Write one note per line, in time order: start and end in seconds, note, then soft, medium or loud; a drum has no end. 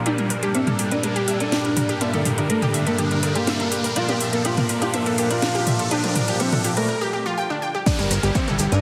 0.00 3.92 D4 medium
0.00 6.85 A#4 medium
0.00 riser medium
0.06 3.92 G2 medium
0.06 1.25 A#2 medium
0.06 1.25 G3 medium
0.06 3.92 G3 medium
0.06 0.16 D4 loud
0.06 1.25 D4 loud
0.06 0.13 G4 medium
0.06 0.16 D5 medium
0.06 closed hi-hat soft
0.18 0.28 G3 medium
0.18 0.28 G4 medium
0.18 0.29 A#4 medium
0.18 closed hi-hat soft
0.30 0.37 A#4 medium
0.30 open hi-hat loud
0.43 0.52 G3 medium
0.43 0.47 G4 loud
0.43 0.52 G4 medium
0.43 closed hi-hat soft
0.55 0.65 C4 medium
0.55 0.65 C5 medium
0.55 0.65 E5 medium
0.55 closed hi-hat soft
0.67 0.77 G3 medium
0.67 0.77 G4 medium
0.67 0.77 A4 medium
0.67 closed hi-hat soft
0.67 mid tom medium
0.79 0.89 G3 medium
0.79 0.86 G4 medium
0.79 0.89 G4 medium
0.79 open hi-hat loud
0.91 1.01 D4 medium
0.91 1.02 A#4 medium
0.91 1.01 D5 medium
0.91 closed hi-hat soft
1.03 1.13 G3 medium
1.03 1.13 G4 medium
1.03 1.11 A#4 medium
1.03 closed hi-hat soft
1.16 1.25 G3 medium
1.16 1.20 G4 loud
1.16 1.25 G4 medium
1.16 closed hi-hat soft
1.28 1.98 A#2 medium
1.28 1.38 G3 medium
1.28 1.98 G3 medium
1.28 1.98 D4 medium
1.28 1.38 G4 medium
1.28 1.38 E5 medium
1.28 open hi-hat loud
1.40 1.91 D4 loud
1.40 1.50 A4 medium
1.40 1.92 D5 medium
1.40 closed hi-hat soft
1.52 1.59 G4 medium
1.52 snare loud
1.52 closed hi-hat soft
1.65 1.75 A#4 medium
1.65 closed hi-hat soft
1.77 1.84 A#4 medium
1.77 mid tom medium
1.77 open hi-hat loud
1.89 1.93 G4 loud
1.89 closed hi-hat soft
2.01 3.20 A#2 medium
2.01 3.20 G3 medium
2.01 2.11 A#3 loud
2.01 3.20 D4 loud
2.01 2.11 A#4 loud
2.01 2.12 E5 medium
2.01 closed hi-hat soft
2.13 2.23 D3 medium
2.13 2.23 D4 medium
2.13 2.24 A4 medium
2.13 closed hi-hat soft
2.25 2.32 G4 medium
2.25 mid tom medium
2.25 open hi-hat loud
2.38 2.47 D3 medium
2.38 2.47 D4 medium
2.38 2.48 A#4 medium
2.38 closed hi-hat soft
2.50 2.60 A3 medium
2.50 2.60 A4 medium
2.50 2.57 A#4 medium
2.50 closed hi-hat soft
2.62 2.72 D3 medium
2.62 2.72 D4 medium
2.62 2.66 G4 loud
2.62 closed hi-hat soft
2.62 mid tom medium
2.74 2.84 D3 medium
2.74 2.84 D4 medium
2.74 2.85 E5 medium
2.74 open hi-hat loud
2.87 2.96 A#3 medium
2.87 2.97 A4 medium
2.87 2.96 A#4 medium
2.87 closed hi-hat soft
2.98 3.09 D3 medium
2.98 3.09 D4 medium
2.98 3.06 G4 medium
2.98 closed hi-hat soft
3.11 3.21 D3 medium
3.11 3.21 D4 medium
3.11 3.21 A#4 medium
3.11 closed hi-hat soft
3.23 3.93 A#2 medium
3.23 3.33 D3 medium
3.23 3.93 G3 medium
3.23 3.93 D4 medium
3.23 3.33 D4 medium
3.23 3.30 A#4 medium
3.23 open hi-hat loud
3.35 3.87 A#3 loud
3.35 3.40 G4 loud
3.35 3.87 A#4 medium
3.35 closed hi-hat soft
3.47 3.58 E5 medium
3.47 snare loud
3.47 closed hi-hat soft
3.60 3.70 A4 medium
3.60 closed hi-hat soft
3.72 3.79 G4 medium
3.72 open hi-hat loud
3.84 3.94 A#4 medium
3.84 open hi-hat medium
3.96 6.86 A#2 medium
3.96 5.15 A#2 medium
3.96 6.86 F3 medium
3.96 5.15 F3 medium
3.96 6.86 D4 medium
3.96 5.15 D4 loud
3.96 4.06 F4 loud
3.96 4.03 A#4 medium
3.96 4.06 F5 medium
3.96 closed hi-hat soft
4.09 4.18 A#3 medium
4.09 4.13 G4 loud
4.09 4.18 A#4 medium
4.09 closed hi-hat soft
4.20 4.31 E5 medium
4.20 open hi-hat loud
4.33 4.43 A#3 medium
4.33 4.43 A4 medium
4.33 4.43 A#4 medium
4.33 closed hi-hat soft
4.45 4.55 F4 medium
4.45 4.52 G4 medium
4.45 4.55 F5 loud
4.45 closed hi-hat soft
4.57 4.67 A#3 medium
4.57 4.67 A#4 medium
4.57 closed hi-hat soft
4.57 mid tom medium
4.69 4.79 A#3 medium
4.69 4.76 A#4 medium
4.69 4.79 A#4 medium
4.69 open hi-hat loud
4.82 4.91 F4 medium
4.82 4.86 G4 loud
4.82 4.91 F5 medium
4.82 closed hi-hat soft
4.94 5.04 A#3 medium
4.94 5.04 A#4 medium
4.94 5.04 E5 medium
4.94 closed hi-hat soft
5.06 5.16 A#3 medium
5.06 5.16 A4 medium
5.06 5.16 A#4 medium
5.06 closed hi-hat soft
5.18 5.88 A#2 medium
5.18 5.88 F3 medium
5.18 5.28 A#3 medium
5.18 5.88 D4 medium
5.18 5.25 G4 medium
5.18 5.28 A#4 medium
5.18 open hi-hat loud
5.30 5.82 F4 loud
5.30 5.41 A#4 medium
5.30 5.82 F5 loud
5.30 closed hi-hat soft
5.42 5.50 A#4 medium
5.42 snare loud
5.42 closed hi-hat soft
5.55 5.59 G4 loud
5.55 closed hi-hat soft
5.67 5.78 E5 medium
5.67 mid tom loud
5.67 open hi-hat loud
5.79 5.89 A4 medium
5.79 closed hi-hat soft
5.91 6.89 A#2 medium
5.91 6.89 F3 medium
5.91 6.01 D4 loud
5.91 6.89 D4 loud
5.91 5.98 G4 medium
5.91 6.01 D5 loud
5.91 closed hi-hat soft
6.04 6.13 F3 medium
6.04 6.13 F4 medium
6.04 6.14 A#4 medium
6.04 closed hi-hat soft
6.16 6.23 A#4 medium
6.16 mid tom medium
6.16 open hi-hat loud
6.28 6.38 F3 medium
6.28 6.38 F4 medium
6.28 6.32 G4 loud
6.28 closed hi-hat soft
6.40 6.50 C4 medium
6.40 6.50 C5 medium
6.40 6.51 E5 medium
6.40 closed hi-hat soft
6.52 6.62 F3 medium
6.52 6.62 F4 medium
6.52 6.63 A4 medium
6.52 closed hi-hat soft
6.52 mid tom medium
6.64 6.74 F3 medium
6.64 6.74 F4 medium
6.64 6.72 G4 medium
6.64 open hi-hat loud
6.77 6.86 A3 medium
6.77 6.86 A4 loud
6.77 6.87 A#4 medium
6.77 closed hi-hat soft
6.89 6.96 A#4 medium
7.01 7.05 G4 loud
7.13 7.17 G4 medium
7.26 7.32 F4 loud
7.38 7.45 G5 medium
7.50 7.57 D4 medium
7.62 7.69 G5 medium
7.75 7.81 G4 medium
7.86 8.81 G3 medium
7.86 7.96 D4 loud
7.86 7.93 G4 medium
7.86 7.96 D5 medium
7.86 8.81 D5 medium
7.86 kick loud
7.86 closed hi-hat soft
7.86 downlifter medium
7.86 maracas soft
7.99 8.06 G1 medium
7.99 8.08 G3 medium
7.99 8.08 G4 medium
7.99 8.09 A#4 medium
7.99 closed hi-hat soft
7.99 maracas soft
8.11 8.18 G1 loud
8.11 8.18 A#4 medium
8.11 cross-stick soft
8.11 open hi-hat loud
8.11 maracas medium
8.23 8.30 G1 medium
8.23 8.33 G3 medium
8.23 8.27 G4 loud
8.23 8.33 G4 medium
8.23 closed hi-hat soft
8.23 maracas soft
8.35 8.45 C4 loud
8.35 8.45 C5 loud
8.35 8.46 E5 medium
8.35 kick loud
8.35 closed hi-hat soft
8.35 maracas medium
8.47 8.55 G1 medium
8.47 8.57 G3 medium
8.47 8.57 G4 medium
8.47 8.58 A4 medium
8.47 cross-stick soft
8.47 closed hi-hat soft
8.47 mid tom medium
8.47 maracas soft
8.59 8.67 G1 loud
8.59 8.69 G3 medium
8.59 8.67 G4 medium
8.59 8.70 G4 medium
8.59 open hi-hat loud
8.59 maracas medium
8.72 8.79 G2 medium
8.72 8.81 D4 medium
8.72 8.81 A#4 medium
8.72 8.81 D5 loud
8.72 closed hi-hat soft
8.72 maracas soft